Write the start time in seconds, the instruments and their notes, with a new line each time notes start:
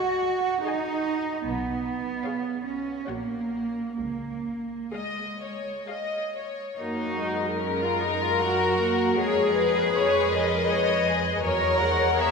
Already playing: cello section F#4, viola section G#4, violin section D#5 G#5
0.65 cello section D#4, viola section G#4, violin section D#5 G#5
1.45 double bass section B1, cello section B3
2.24 viola section G#4, violin section C#5 F5
2.66 cello section C#4
3.07 double bass section A#1, cello section A#3, viola section F#4, violin section C#5 F#5
3.99 double bass section C#2, cello section A#3
4.93 cello section G#3, viola section G#4, violin section D#5 F5
5.42 violin section C#5
5.89 viola section G#4, violin section D#5 F5
6.37 violin section C#5
6.78 double bass section F#2, viola section A#3 F#4, cello section D#4, violin section A#4
7.19 viola section G#3
7.59 cello section C#4, viola section A#4, violin section A#4
7.79 cello section F4
8.00 cello section D#4
8.21 cello section F4
8.40 viola section F#3 A#4, cello section F#4
8.80 viola section A#3
9.18 double bass section F2, viola section G#3 G#4, cello section G#4, violin section C#5
9.56 viola section B4, violin section B4
9.93 violin section B4 C#5, viola section C#5
10.32 viola section A#4, violin section D#5
10.69 viola section B4, violin section C#5
11.07 violin section G#4
11.43 double bass section E2, viola section F#3 C#5, violin section A#4 C#5, cello section A#4
11.81 viola section G#3, violin section F#5
12.19 viola section G#3 C#5, cello section G#4, violin section E5